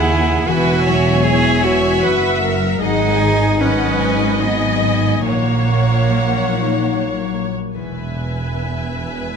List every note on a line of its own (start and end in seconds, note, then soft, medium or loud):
0.00 0.48 D#2 medium
0.00 0.51 C#3 medium
0.00 0.51 G#3 soft
0.00 0.50 E4 medium
0.00 0.47 G#4 medium
0.00 0.49 F#5 medium
0.00 0.47 G#5 medium
0.09 0.51 C#4 soft
0.47 2.00 E1 medium
0.47 2.00 E2 medium
0.47 2.85 E3 medium
0.47 1.25 F#4 medium
0.47 0.87 B4 medium
0.47 1.25 E5 medium
0.47 2.00 G#5 medium
0.86 2.43 F#3 soft
0.86 2.01 C#5 medium
1.23 2.02 E4 soft
1.23 1.65 G#4 medium
1.23 2.79 E5 medium
1.63 2.42 F#4 medium
1.63 5.28 B4 soft
2.03 2.82 F#1 medium
2.03 2.81 F#2 medium
2.03 2.85 E4 soft
2.03 2.43 B4 medium
2.03 2.80 F#5 medium
2.42 3.61 F#3 soft
2.42 2.81 A#4 medium
2.81 5.21 G#1 medium
2.81 5.21 G#2 medium
2.81 5.29 G#2 medium
2.81 3.62 D#4 medium
2.81 3.60 G#4 medium
2.81 3.59 D#5 medium
2.81 3.20 F#5 medium
3.19 4.83 D#3 soft
3.19 3.60 G#5 medium
3.61 4.42 F#3 soft
3.61 4.45 C#4 medium
3.61 4.41 B4 medium
3.61 5.22 D#5 medium
3.61 4.00 F#5 medium
4.00 6.51 D#4 soft
4.00 4.40 G#5 medium
4.41 6.08 F#3 soft
4.41 5.26 B3 medium
4.41 5.25 D#5 medium
4.41 5.23 G#5 soft
4.84 5.29 D#3 soft
5.25 7.56 A#1 medium
5.25 7.56 A#2 medium
5.25 7.80 A#2 soft
5.25 7.32 A#3 medium
5.25 7.52 C#5 medium
5.25 7.52 C#5 soft
5.25 7.56 F#5 medium
5.68 7.33 A#3 soft
6.09 6.92 F#3 soft
6.52 7.80 D#4 soft
6.93 7.79 F#3 soft
7.34 7.79 A#3 soft
7.75 9.37 E1 soft
7.75 9.37 E2 soft
7.75 9.37 B4 soft
7.75 9.37 E5 soft
7.75 9.37 G#5 soft
8.15 8.95 B2 soft
8.55 9.37 B4 soft
8.96 9.37 B2 soft